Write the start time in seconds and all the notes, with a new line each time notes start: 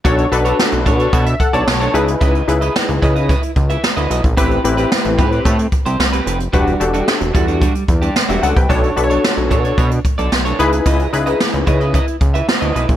0.04 B1 D4 F#4 A4 C#5, kick, closed hi-hat
0.18 closed hi-hat
0.32 B1 D4 F#4 A4 B4, muted clean electric guitar stroke, closed hi-hat
0.45 D4 A4 C#5, closed hi-hat
0.59 muted clean electric guitar stroke, snare
0.72 B1, muted clean electric guitar stroke, closed hi-hat
0.86 B2 D4 A4 C#5, kick, closed hi-hat
0.99 D4 A4 C#5, closed hi-hat
1.13 B2 D4 A4 C#5 F#5, kick, closed hi-hat
1.26 E5, muted clean electric guitar stroke, closed hi-hat
1.40 A4 F#5, muted clean electric guitar stroke, kick, closed hi-hat
1.53 B1 D4 A4 C#5 D5 A5, closed hi-hat
1.67 B1, muted clean electric guitar stroke, snare
1.80 D4 A4 C#5 A5, closed hi-hat
1.94 C#2 D#4 E4 G#4 B4 D#5, closed hi-hat
2.07 muted clean electric guitar stroke, closed hi-hat
2.21 C#2 E4 B4 D#5, kick, closed hi-hat
2.35 closed hi-hat
2.48 C#2 D#4 E4 G#4 B4, muted clean electric guitar stroke, closed hi-hat
2.61 E4 B4 D#5, closed hi-hat
2.75 muted clean electric guitar stroke, snare
2.89 C#2, muted clean electric guitar stroke, closed hi-hat
3.02 C#3 E4 B4 D#5, kick, closed hi-hat
3.16 E4 B4 D#5, closed hi-hat
3.29 E4 B4 D#5, kick, closed hi-hat
3.43 muted clean electric guitar stroke, closed hi-hat
3.56 C#2, muted clean electric guitar stroke, kick, closed hi-hat
3.70 E4 B4 E5, closed hi-hat
3.83 muted clean electric guitar stroke, snare
3.96 D2 E4 B4 D#5, closed hi-hat
4.10 B1 E4 B4 D#5, closed hi-hat
4.24 A#1, muted clean electric guitar stroke, kick, closed hi-hat
4.37 A1 C4 E4 G4 B4, kick, closed hi-hat
4.51 closed hi-hat
4.64 A1 C4 E4 G4 B4, muted clean electric guitar stroke, closed hi-hat
4.77 C4 G4 B4, closed hi-hat
4.91 muted clean electric guitar stroke, snare
5.05 A1, muted clean electric guitar stroke, closed hi-hat
5.18 A2 C4 G4 B4, kick, closed hi-hat
5.31 C4 G4 B4, closed hi-hat
5.45 A2 C4 G4 B4, kick, closed hi-hat
5.59 muted clean electric guitar stroke, closed hi-hat
5.72 muted clean electric guitar stroke, kick, closed hi-hat
5.86 C2 C4 G4 C5, closed hi-hat
5.99 C2, muted clean electric guitar stroke, snare
6.13 C4 G4 B4, closed hi-hat
6.26 F1 C4 G4 B4, closed hi-hat
6.40 muted clean electric guitar stroke, closed hi-hat
6.53 E1 G3 D4 F#4 G4 B4, kick, closed hi-hat
6.67 closed hi-hat
6.80 E1 D4 F#4 G4 A4, muted clean electric guitar stroke, closed hi-hat
6.94 G3 D4 F#4, closed hi-hat
7.07 muted clean electric guitar stroke, snare
7.21 E1, muted clean electric guitar stroke, closed hi-hat
7.34 E2 G3 D4 F#4, kick, closed hi-hat
7.47 G3 D4 F#4, closed hi-hat
7.61 G3 D4 F#4, kick, closed hi-hat
7.75 muted clean electric guitar stroke, closed hi-hat
7.88 E2, muted clean electric guitar stroke, kick, closed hi-hat
8.02 G3 D4 G4, closed hi-hat
8.16 muted clean electric guitar stroke, snare
8.29 E1 G3 D4 F#4 G4 E5, closed hi-hat
8.42 C#2 G3 D4 F#4 A4 F#5, closed hi-hat
8.56 C2 B4 G5, muted clean electric guitar stroke, kick, closed hi-hat
8.69 B1 D4 F#4 A4 C#5, kick, closed hi-hat
8.83 closed hi-hat
8.96 B1 D4 F#4 A4 B4, muted clean electric guitar stroke, closed hi-hat
9.04 C#5
9.10 D4 A4 C#5, closed hi-hat
9.24 muted clean electric guitar stroke, snare
9.37 B1, muted clean electric guitar stroke, closed hi-hat
9.51 B2 D4 A4 C#5, kick, closed hi-hat
9.64 D4 A4 C#5, closed hi-hat
9.78 B2 D4 A4 C#5, kick, closed hi-hat
9.91 muted clean electric guitar stroke, closed hi-hat
10.05 muted clean electric guitar stroke, kick, closed hi-hat
10.18 B1 D4 A4 D5, closed hi-hat
10.32 B1, muted clean electric guitar stroke, snare
10.45 D4 A4 C#5, closed hi-hat
10.59 C#2 D#4 E4 G#4 B4 D#5, closed hi-hat
10.72 muted clean electric guitar stroke, closed hi-hat
10.86 C#2 E4 B4 D#5, kick, closed hi-hat
10.99 closed hi-hat
11.13 C#2 D#4 E4 G#4 B4, muted clean electric guitar stroke, closed hi-hat
11.26 E4 B4 D#5, closed hi-hat
11.40 muted clean electric guitar stroke, snare
11.53 C#2, muted clean electric guitar stroke, closed hi-hat
11.67 C#3 E4 B4 D#5, kick, closed hi-hat
11.80 E4 B4 D#5, closed hi-hat
11.94 E4 B4 D#5, kick, closed hi-hat
12.07 muted clean electric guitar stroke, closed hi-hat
12.21 C#2, muted clean electric guitar stroke, kick, closed hi-hat
12.34 E4 B4 E5, closed hi-hat
12.48 muted clean electric guitar stroke, snare
12.61 D2 E4 B4 D#5, closed hi-hat
12.74 B1 E4 B4 D#5, closed hi-hat
12.88 A#1, muted clean electric guitar stroke, kick, closed hi-hat